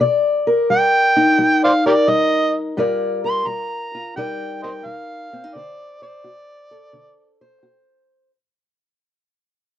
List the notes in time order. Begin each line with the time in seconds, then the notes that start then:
0.00 C3 D5
0.47 A#4
0.70 G3 G5
1.16 D#4
1.38 G3
1.64 C5 D5 F5
1.86 G4 A#4 D5
2.08 G3 D#5
2.77 G2 G3 F4 A#4 D5
3.24 A#4 C6
3.47 G3 A#5
3.95 F4
4.16 C3 G3 D#4 A#4 D5 G5
4.63 A#4 C5 D#5 G5
4.85 G3 F5
5.33 C4
5.44 D#4
5.55 D3 C5 D5
6.02 C5 D5
6.24 F#4
6.71 A4
6.93 D3
7.41 C5
7.63 F#4